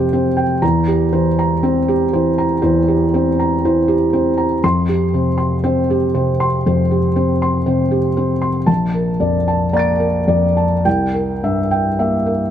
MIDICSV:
0, 0, Header, 1, 2, 480
1, 0, Start_track
1, 0, Key_signature, -1, "major"
1, 0, Tempo, 1001669
1, 300, Time_signature, 4, 2, 24, 8
1, 2702, Tempo, 1015228
1, 4142, Tempo, 1060071
1, 4622, Tempo, 1109057
1, 5817, End_track
2, 0, Start_track
2, 0, Title_t, "Felt piano"
2, 0, Program_c, 0, 0
2, 0, Control_c, 0, 64, 127
2, 0, Note_on_c, 0, 41, 55
2, 0, Note_on_c, 0, 48, 53
2, 0, Note_on_c, 0, 60, 50
2, 0, Note_on_c, 0, 67, 58
2, 0, Note_on_c, 0, 72, 64
2, 0, Note_on_c, 0, 79, 63
2, 61, Note_off_c, 0, 60, 0
2, 61, Note_on_c, 0, 60, 54
2, 62, Note_off_c, 0, 72, 0
2, 62, Note_on_c, 0, 72, 56
2, 133, Note_off_c, 0, 67, 0
2, 176, Note_off_c, 0, 79, 0
2, 176, Note_on_c, 0, 79, 55
2, 204, Note_off_c, 0, 48, 0
2, 252, Note_off_c, 0, 72, 0
2, 278, Note_off_c, 0, 41, 0
2, 298, Note_off_c, 0, 79, 0
2, 298, Note_on_c, 0, 40, 61
2, 298, Note_on_c, 0, 82, 62
2, 300, Note_off_c, 0, 60, 0
2, 307, Control_c, 0, 64, 0
2, 393, Control_c, 0, 64, 127
2, 419, Note_on_c, 0, 67, 49
2, 492, Note_off_c, 0, 82, 0
2, 537, Note_on_c, 0, 52, 48
2, 540, Note_on_c, 0, 72, 57
2, 614, Note_off_c, 0, 67, 0
2, 665, Note_on_c, 0, 82, 59
2, 734, Note_off_c, 0, 72, 0
2, 780, Note_on_c, 0, 60, 56
2, 783, Note_on_c, 0, 72, 56
2, 856, Note_off_c, 0, 82, 0
2, 903, Note_on_c, 0, 67, 58
2, 925, Note_off_c, 0, 52, 0
2, 974, Note_off_c, 0, 72, 0
2, 1022, Note_on_c, 0, 72, 59
2, 1023, Note_on_c, 0, 52, 51
2, 1094, Note_off_c, 0, 67, 0
2, 1142, Note_on_c, 0, 82, 55
2, 1164, Note_off_c, 0, 60, 0
2, 1213, Note_off_c, 0, 72, 0
2, 1241, Note_off_c, 0, 40, 0
2, 1256, Note_on_c, 0, 72, 61
2, 1259, Note_on_c, 0, 40, 57
2, 1333, Note_off_c, 0, 82, 0
2, 1381, Note_on_c, 0, 67, 48
2, 1405, Note_off_c, 0, 52, 0
2, 1450, Note_off_c, 0, 72, 0
2, 1504, Note_on_c, 0, 72, 57
2, 1506, Note_on_c, 0, 60, 48
2, 1573, Note_off_c, 0, 67, 0
2, 1627, Note_on_c, 0, 82, 52
2, 1695, Note_off_c, 0, 72, 0
2, 1748, Note_on_c, 0, 52, 59
2, 1750, Note_on_c, 0, 72, 59
2, 1816, Note_off_c, 0, 82, 0
2, 1859, Note_on_c, 0, 67, 54
2, 1888, Note_off_c, 0, 60, 0
2, 1937, Note_off_c, 0, 72, 0
2, 1980, Note_on_c, 0, 60, 47
2, 1980, Note_on_c, 0, 72, 57
2, 2051, Note_off_c, 0, 67, 0
2, 2097, Note_on_c, 0, 82, 49
2, 2127, Note_off_c, 0, 52, 0
2, 2171, Note_off_c, 0, 72, 0
2, 2199, Note_off_c, 0, 40, 0
2, 2218, Note_off_c, 0, 82, 0
2, 2219, Note_off_c, 0, 60, 0
2, 2221, Note_on_c, 0, 41, 51
2, 2223, Note_on_c, 0, 84, 68
2, 2227, Control_c, 0, 64, 0
2, 2318, Control_c, 0, 64, 127
2, 2341, Note_on_c, 0, 67, 49
2, 2413, Note_off_c, 0, 84, 0
2, 2462, Note_on_c, 0, 72, 44
2, 2463, Note_on_c, 0, 48, 43
2, 2533, Note_off_c, 0, 67, 0
2, 2576, Note_on_c, 0, 84, 49
2, 2654, Note_off_c, 0, 72, 0
2, 2701, Note_on_c, 0, 60, 54
2, 2701, Note_on_c, 0, 72, 63
2, 2771, Note_off_c, 0, 84, 0
2, 2826, Note_on_c, 0, 67, 55
2, 2848, Note_off_c, 0, 48, 0
2, 2894, Note_off_c, 0, 72, 0
2, 2940, Note_on_c, 0, 48, 54
2, 2942, Note_on_c, 0, 72, 59
2, 3019, Note_off_c, 0, 67, 0
2, 3063, Note_on_c, 0, 84, 56
2, 3090, Note_off_c, 0, 60, 0
2, 3138, Note_off_c, 0, 72, 0
2, 3170, Note_off_c, 0, 41, 0
2, 3187, Note_on_c, 0, 41, 45
2, 3187, Note_on_c, 0, 72, 52
2, 3259, Note_off_c, 0, 84, 0
2, 3303, Note_on_c, 0, 67, 48
2, 3331, Note_off_c, 0, 48, 0
2, 3379, Note_off_c, 0, 72, 0
2, 3420, Note_on_c, 0, 60, 46
2, 3422, Note_on_c, 0, 72, 54
2, 3495, Note_off_c, 0, 67, 0
2, 3545, Note_on_c, 0, 84, 59
2, 3612, Note_off_c, 0, 72, 0
2, 3658, Note_on_c, 0, 72, 57
2, 3661, Note_on_c, 0, 48, 51
2, 3732, Note_off_c, 0, 84, 0
2, 3777, Note_on_c, 0, 67, 52
2, 3800, Note_off_c, 0, 60, 0
2, 3849, Note_off_c, 0, 72, 0
2, 3898, Note_on_c, 0, 72, 51
2, 3899, Note_on_c, 0, 60, 44
2, 3970, Note_off_c, 0, 67, 0
2, 4015, Note_on_c, 0, 84, 45
2, 4044, Note_off_c, 0, 48, 0
2, 4092, Note_off_c, 0, 72, 0
2, 4123, Note_off_c, 0, 41, 0
2, 4133, Note_on_c, 0, 81, 62
2, 4136, Note_on_c, 0, 34, 50
2, 4140, Note_off_c, 0, 84, 0
2, 4142, Note_off_c, 0, 60, 0
2, 4151, Control_c, 0, 64, 0
2, 4213, Control_c, 0, 64, 127
2, 4259, Note_on_c, 0, 70, 41
2, 4328, Note_off_c, 0, 81, 0
2, 4376, Note_on_c, 0, 41, 38
2, 4376, Note_on_c, 0, 74, 42
2, 4452, Note_off_c, 0, 70, 0
2, 4501, Note_on_c, 0, 81, 49
2, 4572, Note_off_c, 0, 74, 0
2, 4616, Note_on_c, 0, 58, 46
2, 4616, Note_on_c, 0, 82, 40
2, 4617, Note_on_c, 0, 74, 53
2, 4632, Note_on_c, 0, 93, 41
2, 4643, Note_on_c, 0, 98, 34
2, 4693, Note_off_c, 0, 81, 0
2, 4730, Note_on_c, 0, 70, 47
2, 4762, Note_off_c, 0, 41, 0
2, 4809, Note_off_c, 0, 74, 0
2, 4852, Note_on_c, 0, 41, 45
2, 4853, Note_on_c, 0, 74, 52
2, 4927, Note_off_c, 0, 70, 0
2, 4978, Note_on_c, 0, 81, 46
2, 5001, Note_off_c, 0, 58, 0
2, 5050, Note_off_c, 0, 74, 0
2, 5082, Note_off_c, 0, 34, 0
2, 5082, Note_off_c, 0, 82, 0
2, 5089, Note_off_c, 0, 93, 0
2, 5095, Note_off_c, 0, 98, 0
2, 5099, Note_off_c, 0, 41, 0
2, 5101, Note_off_c, 0, 81, 0
2, 5101, Note_on_c, 0, 36, 57
2, 5101, Note_on_c, 0, 79, 64
2, 5112, Control_c, 0, 64, 0
2, 5183, Control_c, 0, 64, 127
2, 5225, Note_on_c, 0, 70, 43
2, 5298, Note_off_c, 0, 79, 0
2, 5353, Note_on_c, 0, 43, 40
2, 5355, Note_on_c, 0, 76, 49
2, 5419, Note_off_c, 0, 70, 0
2, 5473, Note_on_c, 0, 79, 53
2, 5544, Note_off_c, 0, 76, 0
2, 5595, Note_on_c, 0, 76, 47
2, 5596, Note_on_c, 0, 58, 46
2, 5661, Note_off_c, 0, 79, 0
2, 5712, Note_on_c, 0, 70, 43
2, 5732, Note_off_c, 0, 43, 0
2, 5780, Note_off_c, 0, 76, 0
2, 5817, Note_off_c, 0, 36, 0
2, 5817, Note_off_c, 0, 58, 0
2, 5817, Note_off_c, 0, 70, 0
2, 5817, End_track
0, 0, End_of_file